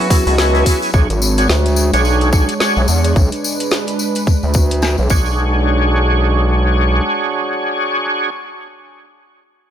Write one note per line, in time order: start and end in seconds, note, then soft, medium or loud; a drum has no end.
0.00 0.92 F#3 medium
0.00 0.92 E4 medium
0.00 0.76 F#4 medium
0.00 0.92 B4 medium
0.00 open hi-hat soft
0.10 0.24 B3 loud
0.10 0.24 C#4 medium
0.10 0.24 E4 medium
0.10 0.24 G#4 loud
0.10 kick loud
0.10 open hi-hat medium
0.10 tambourine medium
0.27 0.64 C#2 loud
0.27 0.36 B3 medium
0.27 0.36 C#4 medium
0.27 0.36 E4 medium
0.27 0.36 G#4 loud
0.27 open hi-hat soft
0.27 tambourine soft
0.38 0.91 B3 medium
0.38 0.91 C#4 medium
0.38 0.91 E4 medium
0.38 0.91 G#4 medium
0.38 snare loud
0.38 open hi-hat soft
0.38 tambourine medium
0.55 open hi-hat soft
0.55 tambourine soft
0.66 kick medium
0.66 open hi-hat medium
0.66 tambourine medium
0.82 open hi-hat soft
0.82 tambourine soft
0.93 1.07 B1 loud
0.93 5.07 G#3 medium
0.93 5.07 D4 medium
0.93 1.09 D4 medium
0.93 1.09 F#4 medium
0.93 1.09 G#4 medium
0.93 3.14 C#5 loud
0.93 1.09 C#5 medium
0.93 kick loud
0.93 tambourine medium
1.10 1.47 G#1 loud
1.10 closed hi-hat medium
1.10 tambourine soft
1.22 tambourine loud
1.38 1.48 D4 medium
1.38 1.48 F#4 medium
1.38 1.48 G#4 medium
1.38 1.48 C#5 medium
1.38 closed hi-hat medium
1.38 tambourine soft
1.49 1.91 D2 medium
1.49 snare loud
1.49 tambourine medium
1.66 closed hi-hat medium
1.66 tambourine soft
1.76 tambourine loud
1.93 2.46 B1 loud
1.93 2.30 D4 medium
1.93 2.30 F#4 medium
1.93 2.30 G#4 medium
1.93 2.30 C#5 loud
1.93 closed hi-hat medium
1.93 tambourine soft
2.05 tambourine medium
2.21 closed hi-hat soft
2.21 tambourine soft
2.33 2.54 D4 medium
2.33 2.54 F#4 medium
2.33 2.54 G#4 medium
2.33 2.54 C#5 loud
2.33 kick loud
2.33 tambourine medium
2.49 closed hi-hat medium
2.49 tambourine soft
2.60 2.82 D4 medium
2.60 2.82 F#4 medium
2.60 2.82 G#4 medium
2.60 2.82 C#5 medium
2.60 snare loud
2.60 tambourine soft
2.76 2.86 B1 loud
2.76 tambourine soft
2.88 3.14 E2 medium
2.88 tambourine medium
3.04 closed hi-hat medium
3.04 tambourine soft
3.16 3.30 B1 loud
3.16 5.09 B4 medium
3.16 kick loud
3.16 tambourine medium
3.32 closed hi-hat medium
3.32 tambourine soft
3.44 tambourine medium
3.60 closed hi-hat medium
3.60 tambourine soft
3.71 snare loud
3.71 tambourine medium
3.87 closed hi-hat medium
3.87 tambourine soft
3.99 tambourine medium
4.15 closed hi-hat medium
4.15 tambourine soft
4.27 kick loud
4.27 tambourine medium
4.43 4.96 D2 medium
4.43 tambourine soft
4.54 kick loud
4.54 tambourine loud
4.71 closed hi-hat medium
4.71 tambourine soft
4.82 snare loud
4.82 tambourine medium
4.98 5.09 B1 medium
4.98 tambourine soft
5.10 7.01 B1 medium
5.10 8.30 G#3 medium
5.10 8.30 D4 medium
5.10 8.30 F#4 medium
5.10 8.30 G#4 medium
5.10 8.30 C#5 medium
5.10 kick loud
5.10 tambourine medium
5.26 tambourine soft